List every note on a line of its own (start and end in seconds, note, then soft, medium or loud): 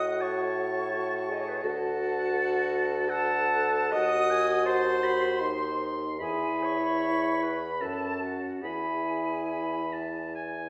0.00 1.60 A2 medium
0.00 0.90 F#4 medium
0.00 0.23 D#5 loud
0.00 0.22 F#5 medium
0.00 0.23 D#6 loud
0.21 1.34 C#5 loud
0.21 1.64 A5 medium
0.21 1.63 C#6 medium
0.93 1.31 F#4 medium
1.29 1.66 G#4 medium
1.29 1.42 D#5 medium
1.41 1.50 C#5 medium
1.49 1.57 B4 medium
1.56 1.63 C#5 medium
1.64 3.95 D2 medium
1.64 3.10 F#4 loud
1.64 2.33 A4 medium
1.64 3.07 F#5 loud
1.64 3.11 A5 medium
2.34 3.94 A4 medium
3.09 3.91 A4 loud
3.09 3.93 F#5 medium
3.09 3.93 A5 loud
3.92 6.20 D#2 medium
3.92 5.42 F#4 medium
3.92 4.68 D#5 loud
3.92 4.32 F#5 medium
3.92 4.65 D#6 loud
4.31 4.67 G#5 medium
4.65 5.91 C5 loud
4.65 5.05 A5 medium
4.65 5.88 C6 loud
5.04 5.41 B5 medium
5.40 6.20 D#4 medium
5.40 6.19 C6 medium
6.19 7.84 E2 medium
6.19 7.65 E4 medium
6.19 6.65 G#4 loud
6.19 6.66 G#5 loud
6.19 7.83 B5 medium
6.63 7.45 C#5 loud
6.63 7.43 C#6 medium
7.43 7.83 B4 medium
7.43 7.85 B5 medium
7.81 8.47 F#2 medium
7.81 8.62 C#4 medium
7.81 8.23 A4 medium
7.81 8.47 A5 medium
7.81 8.25 A5 medium
8.22 8.64 F#4 medium
8.22 8.66 F#5 medium
8.62 10.69 E2 medium
8.62 10.69 E4 medium
8.62 10.33 G#4 medium
8.62 10.34 G#5 medium
8.62 9.39 B5 medium
9.49 9.94 B5 medium
9.93 10.34 A5 medium
10.35 10.69 G#5 medium